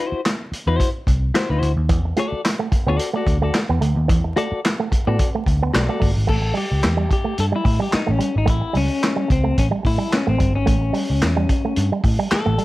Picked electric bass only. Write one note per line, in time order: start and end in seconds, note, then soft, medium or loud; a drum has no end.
0.12 muted picked electric bass stroke soft
0.52 muted picked electric bass stroke soft
0.67 0.77 E2 medium
1.07 1.30 C2 loud
1.50 1.60 D2 medium
1.62 1.75 D2 medium
1.77 1.89 D#2 loud
1.89 2.12 E2 loud
2.32 muted picked electric bass stroke medium
2.72 muted picked electric bass stroke soft
2.87 2.97 D2 loud
3.26 3.49 D2 medium
3.70 3.80 E2 medium
3.81 3.94 D2 medium
3.96 4.10 D#2 medium
4.10 4.32 E2 loud
4.52 muted picked electric bass stroke medium
4.92 muted picked electric bass stroke soft
5.07 5.17 A2 medium
5.46 5.69 D2 loud
5.74 5.87 B1 loud
6.01 6.14 G1 medium
6.17 6.27 G#1 medium
6.29 6.51 A1 loud
6.72 6.82 C#2 medium
6.84 7.06 E2 medium
7.39 7.51 G2 medium
7.65 7.78 A2 loud
7.94 muted picked electric bass stroke soft
8.09 8.19 A1 medium
8.36 8.46 G#1 loud
8.48 8.60 A1 loud
8.75 8.88 C#2 medium
9.30 9.53 C#2 medium
9.58 9.71 A1 medium
9.85 9.98 A2 loud
10.28 10.38 A1 medium
10.40 10.56 G1 medium
10.56 10.66 G#1 medium
10.67 10.90 A1 loud
11.10 11.20 C#2 medium
11.22 11.45 E2 medium
11.77 11.90 G2 medium
12.04 12.17 A2 loud
12.32 muted picked electric bass stroke medium
12.47 12.57 A1 loud